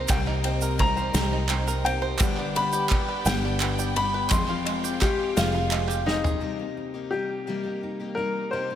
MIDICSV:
0, 0, Header, 1, 8, 480
1, 0, Start_track
1, 0, Key_signature, -3, "minor"
1, 0, Tempo, 703400
1, 66, Time_signature, 6, 3, 24, 8
1, 5972, End_track
2, 0, Start_track
2, 0, Title_t, "Upright piano"
2, 0, Program_c, 0, 0
2, 0, Note_on_c, 0, 82, 103
2, 70, Note_on_c, 0, 79, 84
2, 87, Note_off_c, 0, 82, 0
2, 547, Note_on_c, 0, 82, 109
2, 560, Note_off_c, 0, 79, 0
2, 1261, Note_on_c, 0, 79, 95
2, 1285, Note_off_c, 0, 82, 0
2, 1749, Note_on_c, 0, 83, 93
2, 1754, Note_off_c, 0, 79, 0
2, 2226, Note_on_c, 0, 79, 89
2, 2238, Note_off_c, 0, 83, 0
2, 2706, Note_on_c, 0, 83, 97
2, 2716, Note_off_c, 0, 79, 0
2, 2945, Note_on_c, 0, 84, 87
2, 2949, Note_off_c, 0, 83, 0
2, 3424, Note_on_c, 0, 67, 99
2, 3644, Note_off_c, 0, 67, 0
2, 3663, Note_on_c, 0, 65, 99
2, 3874, Note_off_c, 0, 84, 0
2, 4138, Note_on_c, 0, 63, 88
2, 4155, Note_off_c, 0, 65, 0
2, 4849, Note_on_c, 0, 67, 78
2, 4881, Note_off_c, 0, 63, 0
2, 5308, Note_off_c, 0, 67, 0
2, 5560, Note_on_c, 0, 70, 81
2, 5806, Note_on_c, 0, 72, 76
2, 5819, Note_off_c, 0, 70, 0
2, 5972, Note_off_c, 0, 72, 0
2, 5972, End_track
3, 0, Start_track
3, 0, Title_t, "String section"
3, 0, Program_c, 1, 48
3, 0, Note_on_c, 1, 60, 75
3, 0, Note_on_c, 1, 70, 74
3, 0, Note_on_c, 1, 75, 68
3, 1469, Note_off_c, 1, 60, 0
3, 1470, Note_off_c, 1, 70, 0
3, 1471, Note_off_c, 1, 75, 0
3, 1491, Note_on_c, 1, 79, 90
3, 1492, Note_on_c, 1, 59, 78
3, 1493, Note_on_c, 1, 67, 73
3, 1493, Note_on_c, 1, 74, 75
3, 2919, Note_off_c, 1, 59, 0
3, 2920, Note_off_c, 1, 67, 0
3, 2920, Note_off_c, 1, 74, 0
3, 2945, Note_on_c, 1, 60, 78
3, 2947, Note_on_c, 1, 77, 71
3, 4346, Note_off_c, 1, 79, 0
3, 4368, Note_off_c, 1, 60, 0
3, 4369, Note_off_c, 1, 77, 0
3, 5972, End_track
4, 0, Start_track
4, 0, Title_t, "Steel-string acoustic guitar"
4, 0, Program_c, 2, 25
4, 4621, Note_on_c, 2, 63, 41
4, 5336, Note_off_c, 2, 63, 0
4, 5344, Note_on_c, 2, 63, 43
4, 5568, Note_off_c, 2, 63, 0
4, 5972, End_track
5, 0, Start_track
5, 0, Title_t, "Five-string banjo"
5, 0, Program_c, 3, 105
5, 0, Note_on_c, 3, 70, 74
5, 0, Note_on_c, 3, 72, 77
5, 70, Note_on_c, 3, 60, 81
5, 185, Note_on_c, 3, 63, 76
5, 192, Note_off_c, 3, 70, 0
5, 297, Note_off_c, 3, 60, 0
5, 306, Note_on_c, 3, 60, 73
5, 424, Note_on_c, 3, 70, 75
5, 428, Note_off_c, 3, 72, 0
5, 538, Note_off_c, 3, 60, 0
5, 546, Note_on_c, 3, 60, 68
5, 661, Note_on_c, 3, 72, 68
5, 663, Note_off_c, 3, 63, 0
5, 773, Note_off_c, 3, 60, 0
5, 781, Note_on_c, 3, 60, 90
5, 902, Note_off_c, 3, 70, 0
5, 906, Note_on_c, 3, 63, 74
5, 1017, Note_off_c, 3, 60, 0
5, 1025, Note_on_c, 3, 60, 78
5, 1141, Note_off_c, 3, 72, 0
5, 1143, Note_on_c, 3, 70, 76
5, 1253, Note_off_c, 3, 60, 0
5, 1261, Note_on_c, 3, 60, 73
5, 1378, Note_on_c, 3, 72, 79
5, 1383, Note_off_c, 3, 63, 0
5, 1496, Note_off_c, 3, 70, 0
5, 1499, Note_off_c, 3, 72, 0
5, 1499, Note_on_c, 3, 59, 88
5, 1501, Note_off_c, 3, 60, 0
5, 1630, Note_on_c, 3, 62, 68
5, 1743, Note_off_c, 3, 59, 0
5, 1751, Note_on_c, 3, 59, 73
5, 1863, Note_on_c, 3, 67, 73
5, 1979, Note_off_c, 3, 59, 0
5, 1987, Note_on_c, 3, 59, 71
5, 2104, Note_off_c, 3, 62, 0
5, 2106, Note_on_c, 3, 71, 71
5, 2214, Note_off_c, 3, 59, 0
5, 2223, Note_on_c, 3, 59, 85
5, 2340, Note_off_c, 3, 67, 0
5, 2354, Note_on_c, 3, 62, 71
5, 2468, Note_off_c, 3, 59, 0
5, 2476, Note_on_c, 3, 59, 81
5, 2582, Note_off_c, 3, 71, 0
5, 2586, Note_on_c, 3, 67, 74
5, 2694, Note_off_c, 3, 59, 0
5, 2702, Note_on_c, 3, 59, 76
5, 2826, Note_off_c, 3, 62, 0
5, 2826, Note_on_c, 3, 71, 77
5, 2940, Note_off_c, 3, 59, 0
5, 2942, Note_off_c, 3, 67, 0
5, 2942, Note_off_c, 3, 71, 0
5, 2944, Note_on_c, 3, 56, 91
5, 3065, Note_on_c, 3, 65, 74
5, 3172, Note_off_c, 3, 56, 0
5, 3180, Note_on_c, 3, 56, 73
5, 3303, Note_on_c, 3, 67, 70
5, 3419, Note_off_c, 3, 56, 0
5, 3427, Note_on_c, 3, 56, 67
5, 3541, Note_off_c, 3, 65, 0
5, 3655, Note_off_c, 3, 56, 0
5, 3663, Note_on_c, 3, 56, 83
5, 3780, Note_off_c, 3, 67, 0
5, 3785, Note_on_c, 3, 65, 73
5, 3891, Note_off_c, 3, 56, 0
5, 3899, Note_on_c, 3, 56, 77
5, 4011, Note_on_c, 3, 67, 74
5, 4131, Note_off_c, 3, 56, 0
5, 4139, Note_on_c, 3, 56, 69
5, 4259, Note_on_c, 3, 68, 72
5, 4262, Note_off_c, 3, 65, 0
5, 4375, Note_off_c, 3, 67, 0
5, 4379, Note_off_c, 3, 56, 0
5, 4379, Note_off_c, 3, 68, 0
5, 5972, End_track
6, 0, Start_track
6, 0, Title_t, "Twelve-string acoustic guitar"
6, 0, Program_c, 4, 25
6, 63, Note_on_c, 4, 48, 86
6, 66, Note_on_c, 4, 55, 75
6, 68, Note_on_c, 4, 58, 78
6, 70, Note_on_c, 4, 63, 78
6, 72, Note_on_c, 4, 67, 80
6, 527, Note_off_c, 4, 58, 0
6, 528, Note_off_c, 4, 55, 0
6, 531, Note_on_c, 4, 55, 66
6, 535, Note_on_c, 4, 58, 62
6, 536, Note_off_c, 4, 63, 0
6, 542, Note_off_c, 4, 48, 0
6, 542, Note_off_c, 4, 67, 0
6, 544, Note_on_c, 4, 63, 64
6, 545, Note_on_c, 4, 67, 69
6, 772, Note_off_c, 4, 63, 0
6, 773, Note_off_c, 4, 55, 0
6, 773, Note_off_c, 4, 58, 0
6, 773, Note_off_c, 4, 67, 0
6, 780, Note_on_c, 4, 63, 63
6, 781, Note_on_c, 4, 55, 59
6, 781, Note_on_c, 4, 58, 68
6, 781, Note_on_c, 4, 67, 65
6, 787, Note_on_c, 4, 48, 57
6, 1254, Note_off_c, 4, 67, 0
6, 1257, Note_off_c, 4, 63, 0
6, 1257, Note_on_c, 4, 67, 50
6, 1260, Note_off_c, 4, 58, 0
6, 1263, Note_off_c, 4, 48, 0
6, 1265, Note_on_c, 4, 63, 50
6, 1273, Note_on_c, 4, 58, 45
6, 1498, Note_off_c, 4, 67, 0
6, 1498, Note_on_c, 4, 43, 85
6, 1500, Note_off_c, 4, 55, 0
6, 1503, Note_off_c, 4, 58, 0
6, 1503, Note_off_c, 4, 63, 0
6, 1503, Note_on_c, 4, 55, 86
6, 1504, Note_on_c, 4, 50, 82
6, 1506, Note_on_c, 4, 59, 90
6, 1507, Note_on_c, 4, 67, 91
6, 1510, Note_on_c, 4, 62, 85
6, 1974, Note_off_c, 4, 59, 0
6, 1977, Note_off_c, 4, 55, 0
6, 1979, Note_off_c, 4, 43, 0
6, 1980, Note_on_c, 4, 55, 60
6, 1981, Note_off_c, 4, 50, 0
6, 1981, Note_off_c, 4, 62, 0
6, 1982, Note_on_c, 4, 59, 69
6, 1989, Note_off_c, 4, 67, 0
6, 1989, Note_on_c, 4, 62, 66
6, 1991, Note_on_c, 4, 67, 67
6, 2213, Note_off_c, 4, 67, 0
6, 2216, Note_off_c, 4, 62, 0
6, 2218, Note_off_c, 4, 59, 0
6, 2219, Note_off_c, 4, 55, 0
6, 2222, Note_on_c, 4, 67, 68
6, 2225, Note_on_c, 4, 62, 67
6, 2226, Note_on_c, 4, 59, 66
6, 2229, Note_on_c, 4, 50, 64
6, 2232, Note_on_c, 4, 55, 63
6, 2234, Note_on_c, 4, 43, 59
6, 2698, Note_off_c, 4, 62, 0
6, 2702, Note_off_c, 4, 59, 0
6, 2702, Note_off_c, 4, 67, 0
6, 2703, Note_off_c, 4, 50, 0
6, 2704, Note_on_c, 4, 67, 56
6, 2706, Note_off_c, 4, 43, 0
6, 2706, Note_on_c, 4, 62, 48
6, 2711, Note_off_c, 4, 55, 0
6, 2713, Note_on_c, 4, 59, 45
6, 2714, Note_on_c, 4, 55, 44
6, 2941, Note_off_c, 4, 67, 0
6, 2942, Note_off_c, 4, 62, 0
6, 2944, Note_off_c, 4, 55, 0
6, 2945, Note_off_c, 4, 59, 0
6, 2946, Note_on_c, 4, 53, 76
6, 2946, Note_on_c, 4, 56, 83
6, 2948, Note_on_c, 4, 60, 85
6, 2949, Note_on_c, 4, 65, 80
6, 2954, Note_on_c, 4, 67, 83
6, 3409, Note_off_c, 4, 56, 0
6, 3417, Note_off_c, 4, 60, 0
6, 3418, Note_on_c, 4, 56, 61
6, 3420, Note_off_c, 4, 65, 0
6, 3421, Note_off_c, 4, 67, 0
6, 3422, Note_off_c, 4, 53, 0
6, 3425, Note_on_c, 4, 60, 63
6, 3428, Note_on_c, 4, 65, 66
6, 3429, Note_on_c, 4, 67, 76
6, 3655, Note_off_c, 4, 67, 0
6, 3658, Note_off_c, 4, 56, 0
6, 3660, Note_off_c, 4, 65, 0
6, 3661, Note_off_c, 4, 60, 0
6, 3664, Note_on_c, 4, 67, 71
6, 3668, Note_on_c, 4, 65, 67
6, 3670, Note_on_c, 4, 56, 72
6, 3671, Note_on_c, 4, 60, 65
6, 3673, Note_on_c, 4, 53, 63
6, 4126, Note_off_c, 4, 67, 0
6, 4134, Note_on_c, 4, 67, 54
6, 4135, Note_off_c, 4, 65, 0
6, 4139, Note_off_c, 4, 60, 0
6, 4144, Note_off_c, 4, 56, 0
6, 4144, Note_on_c, 4, 65, 53
6, 4146, Note_off_c, 4, 53, 0
6, 4147, Note_on_c, 4, 60, 48
6, 4372, Note_off_c, 4, 60, 0
6, 4374, Note_on_c, 4, 48, 57
6, 4374, Note_on_c, 4, 55, 64
6, 4375, Note_off_c, 4, 67, 0
6, 4375, Note_on_c, 4, 58, 60
6, 4376, Note_off_c, 4, 65, 0
6, 4379, Note_on_c, 4, 63, 62
6, 4383, Note_on_c, 4, 67, 70
6, 4490, Note_off_c, 4, 67, 0
6, 4491, Note_off_c, 4, 63, 0
6, 4497, Note_off_c, 4, 48, 0
6, 4497, Note_off_c, 4, 55, 0
6, 4497, Note_off_c, 4, 58, 0
6, 4498, Note_on_c, 4, 67, 46
6, 4499, Note_on_c, 4, 63, 35
6, 4508, Note_on_c, 4, 58, 33
6, 4727, Note_off_c, 4, 67, 0
6, 4732, Note_off_c, 4, 63, 0
6, 4735, Note_on_c, 4, 67, 46
6, 4738, Note_off_c, 4, 58, 0
6, 4741, Note_on_c, 4, 63, 42
6, 4747, Note_on_c, 4, 58, 36
6, 4852, Note_off_c, 4, 58, 0
6, 4855, Note_off_c, 4, 63, 0
6, 4857, Note_off_c, 4, 67, 0
6, 4858, Note_on_c, 4, 55, 45
6, 4860, Note_on_c, 4, 58, 47
6, 4863, Note_on_c, 4, 63, 49
6, 4872, Note_on_c, 4, 67, 51
6, 5090, Note_off_c, 4, 55, 0
6, 5093, Note_off_c, 4, 58, 0
6, 5094, Note_off_c, 4, 63, 0
6, 5095, Note_off_c, 4, 67, 0
6, 5097, Note_on_c, 4, 48, 61
6, 5099, Note_on_c, 4, 55, 62
6, 5101, Note_on_c, 4, 58, 60
6, 5102, Note_on_c, 4, 63, 61
6, 5103, Note_on_c, 4, 67, 68
6, 5199, Note_off_c, 4, 67, 0
6, 5207, Note_on_c, 4, 67, 43
6, 5208, Note_off_c, 4, 63, 0
6, 5216, Note_off_c, 4, 58, 0
6, 5216, Note_on_c, 4, 63, 33
6, 5219, Note_off_c, 4, 48, 0
6, 5219, Note_off_c, 4, 55, 0
6, 5224, Note_on_c, 4, 58, 31
6, 5449, Note_off_c, 4, 67, 0
6, 5454, Note_off_c, 4, 63, 0
6, 5457, Note_on_c, 4, 67, 41
6, 5460, Note_off_c, 4, 58, 0
6, 5462, Note_on_c, 4, 63, 35
6, 5468, Note_on_c, 4, 58, 33
6, 5570, Note_off_c, 4, 58, 0
6, 5575, Note_on_c, 4, 55, 44
6, 5578, Note_off_c, 4, 63, 0
6, 5578, Note_on_c, 4, 58, 46
6, 5579, Note_off_c, 4, 67, 0
6, 5586, Note_on_c, 4, 63, 50
6, 5587, Note_on_c, 4, 67, 51
6, 5812, Note_off_c, 4, 55, 0
6, 5813, Note_off_c, 4, 58, 0
6, 5814, Note_off_c, 4, 63, 0
6, 5815, Note_off_c, 4, 67, 0
6, 5818, Note_on_c, 4, 48, 54
6, 5820, Note_on_c, 4, 55, 59
6, 5821, Note_on_c, 4, 58, 62
6, 5822, Note_on_c, 4, 63, 64
6, 5823, Note_on_c, 4, 67, 70
6, 5927, Note_off_c, 4, 67, 0
6, 5932, Note_off_c, 4, 63, 0
6, 5935, Note_on_c, 4, 67, 41
6, 5939, Note_off_c, 4, 58, 0
6, 5940, Note_off_c, 4, 48, 0
6, 5940, Note_on_c, 4, 63, 43
6, 5941, Note_off_c, 4, 55, 0
6, 5947, Note_on_c, 4, 58, 36
6, 5972, Note_off_c, 4, 58, 0
6, 5972, Note_off_c, 4, 63, 0
6, 5972, Note_off_c, 4, 67, 0
6, 5972, End_track
7, 0, Start_track
7, 0, Title_t, "Fingered electric bass"
7, 0, Program_c, 5, 33
7, 65, Note_on_c, 5, 36, 98
7, 755, Note_off_c, 5, 36, 0
7, 778, Note_on_c, 5, 36, 106
7, 1506, Note_off_c, 5, 36, 0
7, 1506, Note_on_c, 5, 31, 95
7, 2194, Note_off_c, 5, 31, 0
7, 2220, Note_on_c, 5, 31, 101
7, 2941, Note_off_c, 5, 31, 0
7, 2941, Note_on_c, 5, 29, 95
7, 3632, Note_off_c, 5, 29, 0
7, 3665, Note_on_c, 5, 29, 98
7, 4355, Note_off_c, 5, 29, 0
7, 5972, End_track
8, 0, Start_track
8, 0, Title_t, "Drums"
8, 56, Note_on_c, 9, 82, 96
8, 60, Note_on_c, 9, 51, 75
8, 64, Note_on_c, 9, 36, 100
8, 64, Note_on_c, 9, 39, 88
8, 124, Note_off_c, 9, 82, 0
8, 128, Note_off_c, 9, 51, 0
8, 132, Note_off_c, 9, 36, 0
8, 133, Note_off_c, 9, 39, 0
8, 185, Note_on_c, 9, 39, 27
8, 253, Note_off_c, 9, 39, 0
8, 300, Note_on_c, 9, 51, 61
8, 304, Note_on_c, 9, 82, 28
8, 368, Note_off_c, 9, 51, 0
8, 372, Note_off_c, 9, 82, 0
8, 419, Note_on_c, 9, 82, 73
8, 488, Note_off_c, 9, 82, 0
8, 540, Note_on_c, 9, 51, 59
8, 542, Note_on_c, 9, 36, 77
8, 609, Note_off_c, 9, 51, 0
8, 611, Note_off_c, 9, 36, 0
8, 661, Note_on_c, 9, 82, 27
8, 729, Note_off_c, 9, 82, 0
8, 781, Note_on_c, 9, 38, 109
8, 781, Note_on_c, 9, 51, 79
8, 781, Note_on_c, 9, 82, 95
8, 849, Note_off_c, 9, 82, 0
8, 850, Note_off_c, 9, 38, 0
8, 850, Note_off_c, 9, 51, 0
8, 1015, Note_on_c, 9, 39, 98
8, 1022, Note_on_c, 9, 51, 60
8, 1083, Note_off_c, 9, 39, 0
8, 1090, Note_off_c, 9, 51, 0
8, 1144, Note_on_c, 9, 82, 68
8, 1212, Note_off_c, 9, 82, 0
8, 1269, Note_on_c, 9, 51, 62
8, 1337, Note_off_c, 9, 51, 0
8, 1492, Note_on_c, 9, 39, 100
8, 1498, Note_on_c, 9, 51, 76
8, 1499, Note_on_c, 9, 82, 95
8, 1504, Note_on_c, 9, 36, 116
8, 1560, Note_off_c, 9, 39, 0
8, 1566, Note_off_c, 9, 51, 0
8, 1567, Note_off_c, 9, 82, 0
8, 1572, Note_off_c, 9, 36, 0
8, 1615, Note_on_c, 9, 39, 29
8, 1683, Note_off_c, 9, 39, 0
8, 1741, Note_on_c, 9, 82, 29
8, 1747, Note_on_c, 9, 51, 61
8, 1809, Note_off_c, 9, 82, 0
8, 1816, Note_off_c, 9, 51, 0
8, 1859, Note_on_c, 9, 82, 69
8, 1928, Note_off_c, 9, 82, 0
8, 1974, Note_on_c, 9, 39, 105
8, 1987, Note_on_c, 9, 36, 78
8, 1989, Note_on_c, 9, 51, 62
8, 2042, Note_off_c, 9, 39, 0
8, 2055, Note_off_c, 9, 36, 0
8, 2058, Note_off_c, 9, 51, 0
8, 2222, Note_on_c, 9, 82, 101
8, 2231, Note_on_c, 9, 38, 110
8, 2231, Note_on_c, 9, 51, 84
8, 2291, Note_off_c, 9, 82, 0
8, 2300, Note_off_c, 9, 38, 0
8, 2300, Note_off_c, 9, 51, 0
8, 2457, Note_on_c, 9, 39, 109
8, 2468, Note_on_c, 9, 51, 65
8, 2525, Note_off_c, 9, 39, 0
8, 2536, Note_off_c, 9, 51, 0
8, 2585, Note_on_c, 9, 82, 74
8, 2653, Note_off_c, 9, 82, 0
8, 2704, Note_on_c, 9, 51, 67
8, 2772, Note_off_c, 9, 51, 0
8, 2933, Note_on_c, 9, 39, 109
8, 2938, Note_on_c, 9, 51, 84
8, 2942, Note_on_c, 9, 36, 105
8, 2945, Note_on_c, 9, 82, 103
8, 3001, Note_off_c, 9, 39, 0
8, 3007, Note_off_c, 9, 51, 0
8, 3010, Note_off_c, 9, 36, 0
8, 3013, Note_off_c, 9, 82, 0
8, 3056, Note_on_c, 9, 39, 30
8, 3124, Note_off_c, 9, 39, 0
8, 3183, Note_on_c, 9, 39, 33
8, 3183, Note_on_c, 9, 51, 67
8, 3251, Note_off_c, 9, 39, 0
8, 3251, Note_off_c, 9, 51, 0
8, 3305, Note_on_c, 9, 82, 69
8, 3374, Note_off_c, 9, 82, 0
8, 3420, Note_on_c, 9, 39, 99
8, 3423, Note_on_c, 9, 36, 79
8, 3424, Note_on_c, 9, 51, 65
8, 3430, Note_on_c, 9, 82, 31
8, 3488, Note_off_c, 9, 39, 0
8, 3491, Note_off_c, 9, 36, 0
8, 3492, Note_off_c, 9, 51, 0
8, 3498, Note_off_c, 9, 82, 0
8, 3666, Note_on_c, 9, 38, 112
8, 3666, Note_on_c, 9, 51, 92
8, 3666, Note_on_c, 9, 82, 101
8, 3734, Note_off_c, 9, 38, 0
8, 3734, Note_off_c, 9, 51, 0
8, 3735, Note_off_c, 9, 82, 0
8, 3897, Note_on_c, 9, 39, 102
8, 3904, Note_on_c, 9, 51, 67
8, 3965, Note_off_c, 9, 39, 0
8, 3972, Note_off_c, 9, 51, 0
8, 4015, Note_on_c, 9, 39, 31
8, 4028, Note_on_c, 9, 82, 71
8, 4083, Note_off_c, 9, 39, 0
8, 4096, Note_off_c, 9, 82, 0
8, 4145, Note_on_c, 9, 38, 61
8, 4214, Note_off_c, 9, 38, 0
8, 4262, Note_on_c, 9, 43, 87
8, 4268, Note_on_c, 9, 82, 27
8, 4330, Note_off_c, 9, 43, 0
8, 4337, Note_off_c, 9, 82, 0
8, 5972, End_track
0, 0, End_of_file